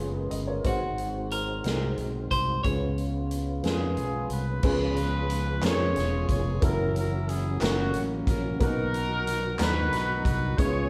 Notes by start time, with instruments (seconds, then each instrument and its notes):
Already playing: fingered electric bass F#1, upright piano C#3 B3 C#4 G#4 B4, tonewheel organ G#3 C#4 F4, french horn section G#3 B3 C#4 F4
0.00 upright piano F4, tonewheel organ G#4 C#5
0.14 upright piano G#4 B4, tonewheel organ A#4 D#5
0.31 fingered electric bass G1, upright piano B4 D#5, closed hi-hat
0.47 upright piano A#4 C#5, tonewheel organ B4 F5
0.64 fingered electric bass G#1, upright piano G#2 C4 D#4 F#4 G#4 C5, tonewheel organ G#3 D#4 F#4 C5, french horn section C4 D#4 F#4, clean electric guitar F#4, kick, closed hi-hat
0.98 closed hi-hat
1.31 clean electric guitar A#4, closed hi-hat
1.64 fingered electric bass C2, upright piano C4 D#4 F#4 G#4 A#4, snare, closed hi-hat
1.98 fingered electric bass B1, closed hi-hat
2.31 fingered electric bass C2, clean electric guitar C5, kick, closed hi-hat
2.63 fingered electric bass C#2, upright piano C#3 B3 C#4 F4 G#4 B4, french horn section G#3 B3 C#4 F4, tonewheel organ G#3 C#4 F4 A#4, clean electric guitar C#5, kick, closed hi-hat
2.73 tonewheel organ B4
2.98 closed hi-hat
3.31 closed hi-hat
3.63 fingered electric bass F2, upright piano B3 C#4 F4 G#4 A#4, horn section B3 F4 G#4, snare, closed hi-hat
3.71 upright piano B4
3.97 fingered electric bass B1, closed hi-hat
4.30 fingered electric bass C2, horn section B4, closed hi-hat
4.63 fingered electric bass C#2, upright piano C#3 B3 C#4 F4 G#4 B4, tonewheel organ F3 G#3 B3 C#4 G#4, horn section F4 G#4 B4, kick, crash
4.96 closed hi-hat
5.30 closed hi-hat
5.62 fingered electric bass F2, upright piano B3 C#4 F4 G#4 A#4, horn section F4 G#4 C#5, snare, clap, closed hi-hat
5.96 fingered electric bass E1, snare, closed hi-hat
6.29 fingered electric bass F1, horn section C#5, kick, closed hi-hat
6.61 fingered electric bass F#1, tonewheel organ E3 F#3 A#3 C#4 F4, upright piano A#3 C#4 E4 F#4 A4, horn section E4 A#4, kick, closed hi-hat
6.65 horn section C#4, tonewheel organ F#4, upright piano A#4
6.96 horn section A#4, closed hi-hat
7.28 horn section G#4, closed hi-hat
7.61 fingered electric bass F#1, tonewheel organ E3 F#3 A#3 C#4 F#4, upright piano A#3 C#4 E4 F#4 A#4, horn section A#3 C#4 F#4, snare, clap, closed hi-hat
7.94 fingered electric bass A1, closed hi-hat
8.27 fingered electric bass A#1, horn section A#4, kick, closed hi-hat
8.60 fingered electric bass B1, upright piano B2 A#3 B3 C#4 F#4 A#4, tonewheel organ B2 D#3 F#3 F#4, horn section D#4 F#4 A#4, kick, closed hi-hat
8.66 upright piano D#4
8.94 closed hi-hat
9.27 closed hi-hat
9.59 fingered electric bass D#2, upright piano F#3 B3 D4 F#4 A#5, horn section D#4 F#4 B4, snare, clap, closed hi-hat
9.66 upright piano D#4
9.92 fingered electric bass B1, snare, closed hi-hat
10.25 fingered electric bass C2, horn section B4, kick, closed hi-hat
10.57 fingered electric bass C#2, tonewheel organ C#3 G#3 B3 C#4 F#4, upright piano C#3 G#3 B3 C#4 E4 G#4, horn section F4 G#4 C#5, kick, closed hi-hat
10.64 upright piano F4, tonewheel organ G#4